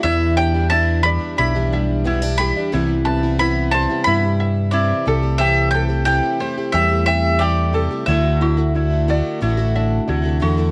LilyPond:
<<
  \new Staff \with { instrumentName = "Mandolin" } { \time 4/4 \key e \minor \tempo 4 = 90 e''8 g''8 a''8 b''8 b''4 r8 b''8~ | b''8 a''8 b''8 a''8 b''4 d''4 | e''8 g''8 g''4 e''8 e''8 d''4 | e''2. r4 | }
  \new Staff \with { instrumentName = "Ukulele" } { \time 4/4 \key e \minor e'8 g'8 e'8 d''8 e'8 e''8 e'8 g'8 | e'8 b'8 e'8 c''8 e'8 e''8 e'8 a'8 | g'8 a'8 g'8 c''8 g'8 g''8 g'8 a'8 | e'8 fis'8 e'8 d''8 e'8 e''8 e'8 fis'8 | }
  \new Staff \with { instrumentName = "Steel-string acoustic guitar" } { \time 4/4 \key e \minor << { e'8 d'8 g'8 d'8 g'8 g8 b16 d'16 g'8 | <e c' e'>8 c'8 e'8 c'8 e'4 c'8 r8 | c'8 g'8 c'8 g'8 g8 c'8 g'8 r8 | <a d' e'>8 e'8 e'8 e'8 e'8 d'4. | } \\ { <e, d>1 | c2.~ c8 c8~ | c2.~ c8 c8 | d2. c8 d8 | } >> }
  \new Staff \with { instrumentName = "Twelve-string acoustic guitar" } { \time 4/4 \key e \minor <e, b, e g d' e'>8. <e g d' e'>16 <e, b, e g d' e'>8 <e g d' e'>8 <e g d' e'>16 <e g d' e'>8. <e, b, e g d' e'>16 <e g d' e'>16 <e g d' e'>16 <e g d' e'>16 | <c e g b e'>8. <g b e'>16 <c e g b e'>8 <e g b e'>16 <g b e'>16 <e g b e'>16 <g e'>8. <c e g e'>8 <e a e' g'>16 <a e' g'>16 | <c e a e' g'>8. <a e' g'>16 <c e a e' g'>8 <e a e' g'>16 <a e' g'>16 <e a e' g'>16 <a e' g'>8. <c e a e' g'>8 <e a e' g'>16 <a e' g'>16 | <d a e' fis'>8. <a e' fis'>16 <d a e' fis'>8 <d a e' fis'>8 <d a e' fis'>16 <a e' fis'>8. <d a e' fis'>16 <a e' fis'>16 <d a e' fis'>16 <a e' fis'>16 | }
  \new Staff \with { instrumentName = "Picked electric bass" } { \clef bass \time 4/4 \key e \minor e,2 b,,2 | c,2 g,4. c,8~ | c,4. r8 e,2 | d,2 a,,4 d,8 e,8 | }
>>